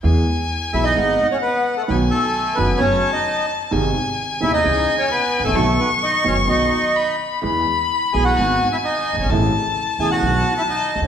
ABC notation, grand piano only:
X:1
M:4/4
L:1/16
Q:1/4=130
K:E
V:1 name="Grand piano" clef=bass
[E,,E,G,B,G]2 z4 [B,,,B,,E,G,B,G]2 [G,,,G,,D,G,B,G]2 z6 | [B,,,B,,D,F,B,F]2 z4 [F,,,F,,D,F,B,F]2 [F,,C,F,A,F]2 z6 | [G,,,G,,^B,,D,G,D]2 z4 [D,,,D,,B,,D,G,D]2 [C,,C,E,G,D]2 z4 z/2 G,,,/2 A,,,/2 ^A,,,/2 | [B,,,B,,D,F,B,F]2 z4 [F,,,F,,D,F,B,F]2 [B,,,B,,D,F,B,F]2 z6 |
[E,,E,G,B,G]2 z4 [B,,,B,,E,G,B,G]2 [G,,,G,,D,G,B,F]2 z4 z/2 F,,,/2 =G,,,/2 ^G,,,/2 | [A,,,A,,C,E,A,E]2 z4 [E,,,E,,C,E,A,E]2 [B,,,B,,D,F,B,F]2 z4 z/2 C,,/2 =D,,/2 z/2 |]